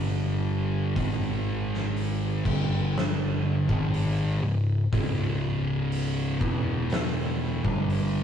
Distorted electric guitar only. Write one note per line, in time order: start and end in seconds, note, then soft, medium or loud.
0.00 0.95 G2 medium
0.00 0.95 D3 loud
0.00 0.95 G3 medium
0.96 2.45 G#2 loud
0.96 2.45 D#3 loud
0.96 2.46 G#3 loud
2.45 3.67 G2 medium
2.45 3.67 D3 medium
2.45 3.68 G3 medium
3.69 4.41 G#2 loud
3.69 4.42 D#3 loud
3.69 4.42 G#3 loud
4.43 4.82 C#2 medium
4.43 4.83 G#2 medium
4.92 6.39 C#2 loud
4.92 6.40 G#2 medium
4.92 6.40 C#3 loud
6.40 7.63 E2 medium
6.40 7.63 B2 loud
6.40 7.63 E3 loud
7.64 8.23 G2 medium
7.64 8.23 D3 medium
7.64 8.23 G3 medium